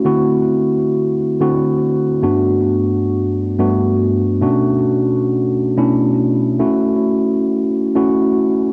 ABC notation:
X:1
M:4/4
L:1/16
Q:"Swing 16ths" 1/4=110
K:Bm
V:1 name="Tine electric piano"
[D,A,=CEF]6- [D,A,CEF] z3 [D,A,CEF]6 | [G,,A,B,DF]6- [G,,A,B,DF] z3 [G,,A,B,DF]6 | [B,,A,CDF]6- [B,,A,CDF] z3 [B,,A,CDE]6 | [A,CEF]6- [A,CEF] z3 [A,CEF]6 |]